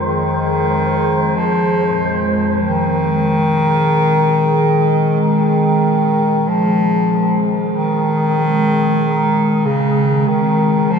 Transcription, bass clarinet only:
0.06 1.38 D#3 medium
1.36 2.33 F3 medium
2.64 5.16 D#3 loud
5.21 6.50 D#3 medium
6.48 7.44 F3 medium
7.77 9.67 D#3 loud
9.66 10.30 C#3 medium
10.28 10.93 D#3 medium
10.91 10.99 F3 loud

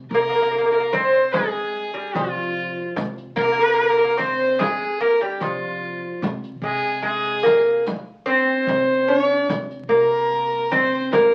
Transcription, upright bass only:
0.11 1.41 C3 medium
2.15 2.80 C3 medium
2.96 3.29 C3 medium
3.37 4.67 C3 medium
5.41 6.06 C3 medium
6.22 6.55 C3 medium
6.62 7.93 C3 medium
8.67 9.32 C3 medium
9.49 9.82 C3 medium
9.89 11.20 C3 medium

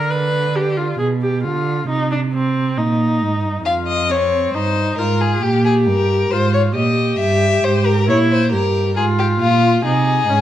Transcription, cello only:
0.00 0.97 D3 medium
1.00 1.45 B2 medium
1.44 1.88 D3 medium
1.89 2.79 C3 medium
2.77 3.24 A#2 medium
3.22 3.45 G#2 medium
3.44 3.65 G2 medium
3.65 4.52 F2 medium
4.54 4.98 G2 medium
4.98 5.42 G#2 medium
5.42 5.88 A#2 medium
5.87 6.31 G2 medium
6.31 6.75 G#2 medium
6.76 7.19 A#2 medium
7.20 7.63 G2 medium
7.64 8.09 G#2 medium
8.08 8.54 A#2 medium
8.52 8.98 G2 medium
8.97 9.40 G#2 medium
9.40 9.84 A#2 medium
9.84 10.28 C3 medium
10.28 10.41 G#2 medium

